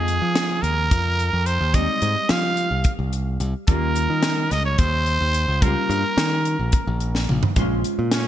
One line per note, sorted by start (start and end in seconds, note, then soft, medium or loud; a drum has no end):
0.00 0.18 F2 medium
0.00 1.70 F3 medium
0.00 1.70 G#3 medium
0.00 1.71 C4 medium
0.00 1.71 D#4 medium
0.00 0.64 G#4 medium
0.08 closed hi-hat medium
0.22 0.60 F3 medium
0.36 snare loud
0.36 closed hi-hat medium
0.62 0.88 D#2 medium
0.62 1.48 A#4 medium
0.62 closed hi-hat medium
0.91 1.29 F2 medium
0.91 kick loud
0.91 closed hi-hat medium
1.20 closed hi-hat soft
1.33 1.58 F2 medium
1.46 1.76 C5 medium
1.46 closed hi-hat medium
1.61 1.86 D#2 medium
1.74 3.64 G3 medium
1.74 3.64 G#3 medium
1.74 3.64 C4 medium
1.74 3.65 D#4 medium
1.74 2.31 D#5 medium
1.74 kick loud
1.74 closed hi-hat medium
2.02 2.15 G#2 medium
2.02 closed hi-hat medium
2.29 2.68 F3 medium
2.29 2.92 F5 loud
2.29 snare loud
2.29 closed hi-hat medium
2.57 closed hi-hat medium
2.71 2.84 C2 medium
2.84 kick loud
2.84 closed hi-hat medium
2.99 3.37 C2 medium
3.13 closed hi-hat medium
3.40 3.53 C2 loud
3.40 closed hi-hat medium
3.67 4.06 D#2 medium
3.67 5.59 G3 medium
3.67 5.59 A#3 medium
3.67 5.59 C#4 medium
3.67 5.59 F4 medium
3.67 4.53 A#4 medium
3.67 kick loud
3.67 closed hi-hat medium
3.96 closed hi-hat medium
4.10 4.48 D#3 medium
4.23 snare medium
4.23 closed hi-hat medium
4.51 4.77 C#2 medium
4.51 4.65 D#5 medium
4.51 snare soft
4.51 closed hi-hat medium
4.65 4.80 C#5 medium
4.78 5.17 D#2 medium
4.78 5.64 C5 loud
4.78 kick loud
4.78 closed hi-hat medium
5.06 closed hi-hat medium
5.21 5.46 D#2 medium
5.34 closed hi-hat medium
5.48 5.74 C#2 medium
5.62 7.53 G3 medium
5.62 7.53 A#3 soft
5.62 7.53 C#4 medium
5.62 7.54 F4 medium
5.62 7.29 A#4 medium
5.62 kick loud
5.62 closed hi-hat medium
5.90 6.03 G2 medium
5.90 closed hi-hat medium
6.17 6.56 D#3 medium
6.17 snare loud
6.17 closed hi-hat medium
6.45 closed hi-hat medium
6.59 6.72 A#1 medium
6.72 kick loud
6.72 closed hi-hat medium
6.87 7.26 A#1 medium
7.00 closed hi-hat medium
7.15 snare medium
7.29 7.42 A#1 medium
7.29 mid tom medium
7.43 floor tom medium
7.56 7.82 A#1 medium
7.56 8.28 G#3 medium
7.56 8.28 C#4 medium
7.56 8.28 F4 medium
7.56 8.28 C5 medium
7.56 kick loud
7.56 closed hi-hat medium
7.84 closed hi-hat medium
7.99 8.28 A#2 medium
8.12 8.28 C#4 medium
8.12 snare medium
8.12 closed hi-hat medium